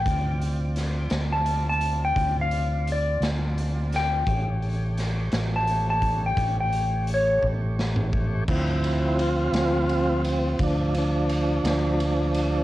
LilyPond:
<<
  \new Staff \with { instrumentName = "Electric slide guitar" } { \time 12/8 \key d \minor \tempo 4. = 57 g''4.~ g''16 a''8 a''8 g''8 f''8. d''8 r4 g''8~ | g''4.~ g''16 a''8 a''8 g''8 g''8. cis''8 r4. | r1. | }
  \new Staff \with { instrumentName = "Tonewheel organ" } { \time 12/8 \key d \minor << { <c' f' d''>1. | <a g' cis''>1. | r4 <e' f'>4. c'8 d'8 d'2~ d'8 | } \\ { r1. | r1. | <f c' e'>1. | } >> }
  \new Staff \with { instrumentName = "Fingered electric bass" } { \clef bass \time 12/8 \key d \minor d,4. d,4. d,4. d,4. | a,,4. a,,4. a,,4. a,,4. | d,4. d,4. d,4. d,4. | }
  \new DrumStaff \with { instrumentName = "Drums" } \drummode { \time 12/8 <hh bd>8 hh8 <hh sn>8 <hh sn>8 hh8 hh8 <hh bd>8 hh8 hh8 <hh sn>8 hh8 <hh sn>8 | <hh bd>8 hh8 <hh sn>8 <hh sn>8 hh8 <hh bd>8 <hh bd>8 hh8 hh8 bd8 sn16 toml16 bd8 | <cymc bd>8 cymr8 cymr8 <cymr sn>8 cymr8 cymr8 <bd cymr>8 cymr8 cymr8 <cymr sn>8 cymr8 cymr8 | }
>>